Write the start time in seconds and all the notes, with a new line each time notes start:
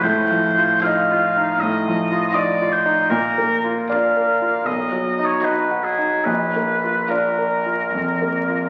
0.03 A2 C5
0.31 F3
0.58 F4
0.82 F3 D#4 F4 F5
0.87 D#5
1.11 F4
1.37 D#4
1.60 A2 D#5
1.88 F3
2.12 F4
2.33 F3 D#4 F4 D5 D#5
2.62 F4
2.72 C5
2.86 D#4
3.10 A#2 A#4
3.38 A#3
3.64 F4
3.89 F3 D4 F4 A#4 D5 F5
4.17 A#4
4.42 F4
4.66 B1 B2 D#5
4.92 F#3
5.19 D#4
5.25 C#5
5.42 F#3 D#4 F#4 B4 D#5
5.71 F#4
5.84 G#4
5.98 D#4
6.25 A#1 A#2 B4
6.56 A#3
6.84 F4
7.10 F3 D4 F4 A#4 D5
7.39 A#4
7.66 F4
7.93 F2
8.22 A#3
8.49 F4